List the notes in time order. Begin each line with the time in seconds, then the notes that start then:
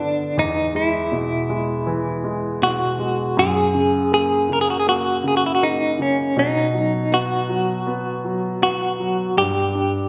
Already playing: G2 B3 D4
0.00 D3
0.37 E2 D#4
0.75 G#3 E4
1.12 B2
1.50 G#3
1.87 E3
2.24 G#3
2.62 B2 F#4
2.99 G#3
3.37 F#2 G#4
3.75 C#3
4.12 A#3 G#4
4.49 C#3 A#4
4.61 G#4
4.70 F#4
4.80 G#4
4.87 A#3 F#4
5.24 C#3 G#4
5.37 F#4
5.46 E4
5.55 F#4
5.62 A#3 D#4
5.99 C#3 C#4
6.37 B2 D#4
6.74 F#3
7.12 B3 F#4
7.49 F#3
7.87 B3
8.25 F#3
8.62 B3 F#4
9.00 F#3
9.37 G2 G4
9.75 D4